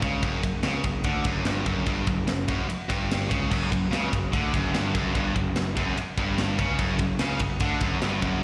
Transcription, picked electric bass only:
0.03 0.21 C#2 loud
0.23 0.42 F#1 medium
0.43 0.62 F#1 medium
0.63 0.82 C#2 medium
0.84 1.03 F#1 medium
1.04 1.23 D2 medium
1.25 1.44 F#1 medium
1.45 1.64 G1 medium
1.66 1.85 F#1 medium
1.87 2.06 G1 loud
2.07 2.25 F#1 medium
2.26 2.46 F#1 medium
2.49 2.67 F#1 loud
2.68 muted picked electric bass stroke soft
2.89 3.27 G1 medium
3.31 3.50 C#2 medium
3.51 3.70 F#1 medium
3.72 3.91 F#1 medium
3.92 4.11 C#2 medium
4.13 4.32 F#1 medium
4.33 4.52 D2 medium
4.54 4.73 F#1 loud
4.75 4.93 G1 medium
4.94 5.13 F#1 loud
5.15 5.34 G1 medium
5.36 5.55 F#1 medium
5.57 5.75 F#1 medium
5.76 5.95 F#1 loud
5.96 muted picked electric bass stroke soft
6.18 6.56 G1 loud
6.59 6.78 C#2 medium
6.79 6.98 F#1 loud
6.99 7.18 F#1 medium
7.20 7.39 C#2 medium
7.40 7.59 F#1 medium
7.61 7.80 D2 medium
7.81 8.00 F#1 medium
8.02 8.21 G1 loud
8.22 8.41 F#1 medium

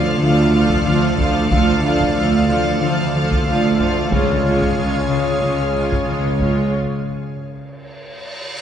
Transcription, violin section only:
0.00 0.21 F5 soft
0.22 0.53 F5 medium
0.54 0.85 F5 soft
0.86 1.18 F5 soft
1.19 1.50 F5 soft
1.51 1.84 F5 medium
1.85 2.15 F5 soft
2.16 2.47 F5 soft
2.48 2.80 F5 soft
2.81 3.13 F5 soft
3.15 3.47 F5 soft
3.48 3.79 F5 soft
3.80 4.12 F5 soft
4.12 4.44 C#5 soft
4.45 4.77 C#5 soft
4.78 5.09 C#5 soft
5.10 5.42 C#5 soft
5.43 5.75 C#5 soft
5.76 6.07 C#5 soft
6.09 6.40 C#5 soft
6.41 6.73 C#5 soft

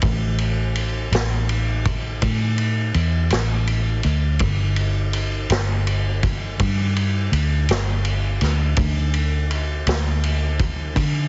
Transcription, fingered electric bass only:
0.03 1.08 A1 medium
1.12 2.17 A1 medium
2.22 2.91 A2 loud
2.95 3.28 E2 medium
3.31 4.00 A1 medium
4.05 4.38 D2 loud
4.41 5.46 G1 loud
5.50 6.55 G1 medium
6.59 7.28 G2 loud
7.32 7.66 D2 medium
7.69 8.37 G1 medium
8.42 8.75 D2 loud
8.78 9.83 D2 loud
9.87 10.92 D2 loud
10.96 11.28 D3 loud

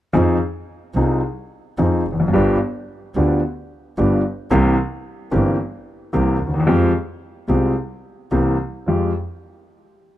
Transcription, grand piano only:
0.13 0.36 F2 medium
0.13 0.36 F3 medium
0.13 0.36 C4 soft
0.13 0.36 D#4 soft
0.13 0.36 G#4 soft
0.95 1.19 C2 soft
0.95 1.19 C3 soft
0.95 1.19 F3 soft
0.95 1.19 C4 soft
0.95 1.19 D#4 soft
0.95 1.19 G#4 soft
1.78 2.01 F2 soft
1.78 2.02 F3 soft
1.78 2.01 C4 soft
1.78 2.01 D#4 soft
1.78 2.02 G#4 soft
2.12 2.19 E2 soft
2.20 2.26 F2 soft
2.28 2.34 F#2 soft
2.33 2.56 G1 medium
2.33 2.56 G2 medium
2.33 2.56 F3 medium
2.33 2.56 B3 soft
2.33 2.56 D4 soft
2.33 2.56 G4 medium
3.16 3.39 D2 soft
3.16 3.39 D3 soft
3.16 3.39 F3 soft
3.16 3.39 B3 soft
3.16 3.39 D4 soft
3.16 3.39 G4 soft
3.98 4.20 G1 soft
3.98 4.20 G2 soft
3.98 4.20 F3 soft
3.98 4.20 B3 soft
3.98 4.20 D4 soft
3.98 4.20 G4 soft
4.50 4.74 C2 medium
4.50 4.74 C3 medium
4.50 4.74 E3 medium
4.50 4.74 A#3 soft
4.50 4.74 C4 soft
4.50 4.74 G4 medium
5.31 5.55 G1 soft
5.31 5.55 G2 soft
5.31 5.55 E3 soft
5.31 5.55 A#3 soft
5.31 5.55 C4 soft
5.31 5.55 G4 soft
6.13 6.36 C2 soft
6.13 6.36 C3 soft
6.13 6.36 E3 soft
6.13 6.36 A#3 soft
6.13 6.36 C4 soft
6.13 6.36 G4 soft
6.47 6.54 D2 soft
6.54 6.61 D#2 soft
6.60 6.67 E2 medium
6.67 6.90 F2 medium
6.67 6.90 F3 medium
6.67 6.90 G#3 medium
6.67 6.90 C4 medium
6.67 6.90 G4 medium
7.48 7.72 C2 soft
7.48 7.72 C3 soft
7.48 7.71 F3 soft
7.48 7.72 G#3 soft
7.48 7.72 C4 soft
7.48 7.72 G4 soft
8.31 8.55 C2 soft
8.31 8.55 C3 soft
8.31 8.54 E3 soft
8.31 8.55 A#3 soft
8.31 8.55 C4 soft
8.31 8.55 G4 soft
8.87 9.10 F2 soft
8.87 9.10 G#3 soft
8.87 9.10 F4 soft
8.87 9.10 G4 soft

